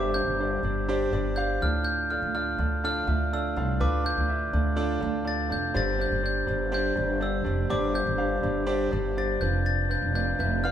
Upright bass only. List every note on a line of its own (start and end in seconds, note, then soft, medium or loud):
0.00 0.24 G1 loud
0.26 0.60 G1 medium
0.63 1.09 G1 medium
1.12 1.58 G1 loud
1.62 2.19 D2 loud
2.22 2.56 D2 medium
2.58 3.04 D2 loud
3.07 3.53 D2 loud
3.56 3.79 C2 loud
3.81 4.15 D2 loud
4.17 4.51 D2 medium
4.53 4.99 D2 loud
5.02 5.48 D2 loud
5.51 5.74 F1 medium
5.75 6.10 G1 loud
6.12 6.46 G1 medium
6.48 6.94 G1 loud
6.97 7.43 G1 loud
7.46 7.69 F1 loud
7.71 8.05 G1 loud
8.07 8.41 G1 loud
8.43 8.89 G1 loud
8.93 9.38 G1 loud
9.42 9.99 F1 loud
10.02 10.36 F1 medium
10.39 10.71 F1 loud